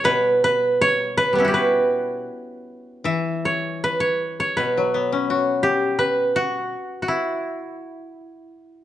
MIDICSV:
0, 0, Header, 1, 3, 480
1, 0, Start_track
1, 0, Tempo, 736196
1, 47, Time_signature, 2, 2, 24, 8
1, 1487, Tempo, 767263
1, 2927, Tempo, 722022
1, 4847, Tempo, 778210
1, 5694, End_track
2, 0, Start_track
2, 0, Title_t, "Koto"
2, 0, Program_c, 0, 107
2, 0, Note_on_c, 0, 67, 69
2, 0, Note_on_c, 0, 73, 59
2, 31, Note_on_c, 0, 71, 86
2, 285, Note_off_c, 0, 71, 0
2, 287, Note_on_c, 0, 71, 81
2, 529, Note_off_c, 0, 73, 0
2, 531, Note_on_c, 0, 73, 96
2, 625, Note_off_c, 0, 67, 0
2, 763, Note_off_c, 0, 71, 0
2, 766, Note_on_c, 0, 71, 85
2, 866, Note_on_c, 0, 55, 37
2, 882, Note_on_c, 0, 59, 40
2, 902, Note_on_c, 0, 61, 41
2, 912, Note_on_c, 0, 64, 44
2, 943, Note_on_c, 0, 66, 48
2, 964, Note_on_c, 0, 67, 50
2, 982, Note_off_c, 0, 55, 0
2, 1001, Note_off_c, 0, 71, 0
2, 1003, Note_on_c, 0, 71, 71
2, 1607, Note_off_c, 0, 73, 0
2, 1970, Note_on_c, 0, 76, 67
2, 2134, Note_off_c, 0, 71, 0
2, 2221, Note_on_c, 0, 73, 63
2, 2261, Note_off_c, 0, 67, 0
2, 2286, Note_off_c, 0, 66, 0
2, 2351, Note_off_c, 0, 64, 0
2, 2461, Note_on_c, 0, 71, 69
2, 2497, Note_off_c, 0, 61, 0
2, 2562, Note_off_c, 0, 73, 0
2, 2564, Note_on_c, 0, 73, 70
2, 2591, Note_off_c, 0, 59, 0
2, 2810, Note_off_c, 0, 73, 0
2, 2812, Note_on_c, 0, 73, 70
2, 2905, Note_off_c, 0, 76, 0
2, 2915, Note_off_c, 0, 71, 0
2, 2918, Note_on_c, 0, 71, 68
2, 3623, Note_on_c, 0, 67, 72
2, 3858, Note_off_c, 0, 71, 0
2, 3861, Note_on_c, 0, 71, 78
2, 3906, Note_off_c, 0, 73, 0
2, 4107, Note_on_c, 0, 66, 74
2, 4147, Note_off_c, 0, 67, 0
2, 4547, Note_off_c, 0, 66, 0
2, 4549, Note_on_c, 0, 66, 47
2, 4589, Note_on_c, 0, 64, 60
2, 5027, Note_off_c, 0, 71, 0
2, 5694, Note_off_c, 0, 64, 0
2, 5694, Note_off_c, 0, 66, 0
2, 5694, End_track
3, 0, Start_track
3, 0, Title_t, "Koto"
3, 0, Program_c, 1, 107
3, 27, Note_on_c, 1, 47, 58
3, 1477, Note_off_c, 1, 47, 0
3, 1964, Note_on_c, 1, 52, 48
3, 2925, Note_on_c, 1, 47, 52
3, 3055, Note_on_c, 1, 54, 42
3, 3166, Note_on_c, 1, 59, 40
3, 3287, Note_on_c, 1, 61, 40
3, 3398, Note_off_c, 1, 52, 0
3, 3404, Note_on_c, 1, 66, 41
3, 4004, Note_off_c, 1, 54, 0
3, 4119, Note_off_c, 1, 59, 0
3, 4238, Note_off_c, 1, 61, 0
3, 4354, Note_off_c, 1, 47, 0
3, 4355, Note_off_c, 1, 66, 0
3, 5694, End_track
0, 0, End_of_file